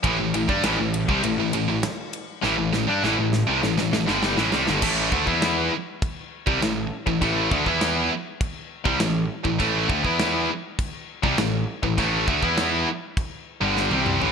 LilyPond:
<<
  \new Staff \with { instrumentName = "Distorted electric guitar" } { \clef bass \time 4/4 \key a \minor \tempo 4 = 100 <a, e>16 <a, e>16 <a, e>16 <g d'>16 <a, e>16 <a, e>8 <c g>16 <a, e>16 <a, e>16 <a, e>16 <a, e>16 r4 | <a, e>16 <a, e>16 <a, e>16 <g d'>16 <a, e>16 <a, e>8 <c g>16 <a, e>16 <a, e>16 <a, e>16 <g, d g>8 <a, e>16 <c g>16 <g, d>16 | <a, e a>8 <d a>16 <e b e'>8. r4 r16 <c g>16 <a, e>8 r16 <a, e>16 | <a, e a>8 <d a>16 <e b e'>8. r4 r16 <c g>16 <a, e>8 r16 <a, e>16 |
<a, e a>8 <d a>16 <e b e'>8. r4 r16 <c g>16 <a, e>8 r16 <a, e>16 | <a, e a>8 <d a>16 <e b e'>8. r4 r16 <g, d g>8 <c g c'>8 <a, e>16 | }
  \new Staff \with { instrumentName = "Distorted electric guitar" } { \clef bass \time 4/4 \key a \minor <a, e>16 <a, e>16 <a, e>16 <g d'>16 <a, e>16 <a, e>8 <c g>16 <a, e>16 <a, e>16 <a, e>16 <a, e>16 r4 | <a, e>16 <a, e>16 <a, e>16 <g d'>16 <a, e>16 <a, e>8 <c g>16 <a, e>16 <a, e>16 <a, e>16 <g, d g>8 <a, e>16 <c g>16 <g, d>16 | <a, e a>8 <d a>16 <e b e'>8. r4 r16 <c g>16 <a, e>8 r16 <a, e>16 | <a, e a>8 <d a>16 <e b e'>8. r4 r16 <c g>16 <a, e>8 r16 <a, e>16 |
<a, e a>8 <d a>16 <e b e'>8. r4 r16 <c g>16 <a, e>8 r16 <a, e>16 | <a, e a>8 <d a>16 <e b e'>8. r4 r16 <g, d g>8 <c g c'>8 <a, e>16 | }
  \new Staff \with { instrumentName = "Distorted electric guitar" } { \clef bass \time 4/4 \key a \minor <a, e>16 <a, e>16 <a, e>16 <g d'>16 <a, e>16 <a, e>8 <c g>16 <a, e>16 <a, e>16 <a, e>16 <a, e>16 r4 | <a, e>16 <a, e>16 <a, e>16 <g d'>16 <a, e>16 <a, e>8 <c g>16 <a, e>16 <a, e>16 <a, e>16 <g, d g>8 <a, e>16 <c g>16 <g, d>16 | <a, e a>8 <d a>16 <e b e'>8. r4 r16 <c g>16 <a, e>8 r16 <a, e>16 | <a, e a>8 <d a>16 <e b e'>8. r4 r16 <c g>16 <a, e>8 r16 <a, e>16 |
<a, e a>8 <d a>16 <e b e'>8. r4 r16 <c g>16 <a, e>8 r16 <a, e>16 | <a, e a>8 <d a>16 <e b e'>8. r4 r16 <g, d g>8 <c g c'>8 <a, e>16 | }
  \new Staff \with { instrumentName = "Picked electric bass" } { \clef bass \time 4/4 \key a \minor a,,16 a,,16 a,,16 g,16 a,,16 a,,8 c,16 a,,16 a,,16 a,,16 a,,16 r4 | a,,16 a,,16 a,,16 g,16 a,,16 a,,8 c,16 a,,16 a,,16 a,,16 g,,8 a,,16 c,16 g,,16 | a,,8 d,16 e,8. r4 r16 c,16 a,,8 r16 a,,16 | a,,8 d,16 e,8. r4 r16 c,16 a,,8 r16 a,,16 |
a,,8 d,16 e,8. r4 r16 c,16 a,,8 r16 a,,16 | a,,8 d,16 e,8. r4 r16 g,,8 c,8 a,,16 | }
  \new DrumStaff \with { instrumentName = "Drums" } \drummode { \time 4/4 <bd cymr>8 cymr16 bd16 <cymr sn>8 cymr16 bd16 cymr8 cymr8 <cymr sn>8 cymr8 | sn8 sn8 sn8 sn8 sn16 sn16 sn16 sn16 sn16 sn16 sn16 sn16 | <cymc bd>8 bd16 bd16 <cymc sn>4 <cymc bd>8. bd16 <cymc sn>8. bd16 | <cymc bd>8 bd16 bd16 <cymc sn>4 <cymc bd>8. bd16 <cymc sn>8. bd16 |
<cymc bd>8 bd16 bd16 <cymc sn>4 <cymc bd>8. bd16 <cymc sn>8. bd16 | <cymc bd>8 bd16 bd16 <cymc sn>4 <cymc bd>4 sn16 tommh16 toml16 tomfh16 | }
>>